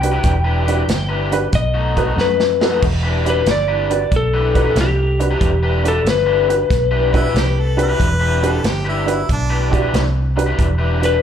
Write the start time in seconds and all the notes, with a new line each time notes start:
Already playing: C2 G5
0.01 D4 F#4 G4 B4, muted overdriven electric guitar stroke, closed hi-hat
0.12 E3 D4 G4 B4
0.23 E1, kick, closed hi-hat
0.44 E3 D4 G4 B4
0.65 E3 D4 F#4 G4 B4, closed hi-hat
0.88 G1, snare, closed hi-hat
1.09 E3 D4 G4 B4
1.32 D4 F#4 G4 B4, muted overdriven electric guitar stroke, closed hi-hat
1.53 B1 D#5, kick, closed hi-hat
1.74 B2 A3 D#4 F#4
1.96 B2 A3 D#4 F#4 A4 B4, kick, closed hi-hat
2.06 B2 A3 D#4 F#4
2.17 F#2, snare
2.21 B4
2.40 snare
2.61 D#4 F#4 A4 B4, muted overdriven electric guitar stroke, snare
2.70 B2 A3 D#4 F#4
2.82 E1, kick, crash
3.03 E3 D4 G4 B4
3.24 E3 D4 F#4 G4 B4, closed hi-hat
3.30 B4
3.46 G1, snare, closed hi-hat
3.51 D5
3.68 E3 D4 G4 B4
3.90 D4 F#4 G4 B4, muted overdriven electric guitar stroke, closed hi-hat
4.12 B1, kick, closed hi-hat
4.16 A4
4.34 E3 D4 G4 B4
4.55 E3 D4 F#4 G4 B4, kick, closed hi-hat
4.65 E3 D4 G4 B4
4.76 C2, snare, closed hi-hat
4.81 G4
5.19 D4 F#4 G4 B4, muted overdriven electric guitar stroke, closed hi-hat
5.31 E3 D4 G4 B4
5.41 E1, kick, closed hi-hat
5.63 E3 D4 G4 B4
5.83 E3 D4 F#4 G4 B4, closed hi-hat
5.88 A4
6.05 G1, snare, closed hi-hat
6.10 B4
6.26 E3 D4 G4 B4
6.48 D4 F#4 G4 B4, muted overdriven electric guitar stroke, closed hi-hat
6.70 B1, kick, snare, closed hi-hat
6.91 E3 D4 G4 B4
7.12 E3 D4 F#4 G4 B4, kick, closed hi-hat
7.16 E4
7.22 E3 D4 G4 B4
7.34 C2 G4, snare, closed hi-hat
7.60 A4
7.77 D4 F#4 G4 B4, muted overdriven electric guitar stroke, closed hi-hat
7.83 B4
7.88 E3 D4 G4 B4
8.00 E1, kick, closed hi-hat
8.20 E3 D4 G4 B4
8.42 E3 D4 F#4 G4 B4, closed hi-hat
8.46 A4
8.64 G1, snare, closed hi-hat
8.68 G4
8.85 E3 D4 E4 G4 B4
9.06 D4 F#4 G4 B4, muted overdriven electric guitar stroke, closed hi-hat
9.11 E4
9.29 B1 D4, kick, closed hi-hat
9.50 E3 D4 G4 B4
9.71 E3 D4 F#4 G4 B4 D5, kick, closed hi-hat
9.82 E3 D4 G4 B4
9.94 C2, snare, closed hi-hat
10.36 D4 F#4 G4 B4, muted overdriven electric guitar stroke, closed hi-hat
10.46 E3 D4 G4 B4
10.58 E1, kick, closed hi-hat
10.78 E3 D4 G4 B4
11.00 E3 D4 F#4 G4 B4, closed hi-hat
11.05 B4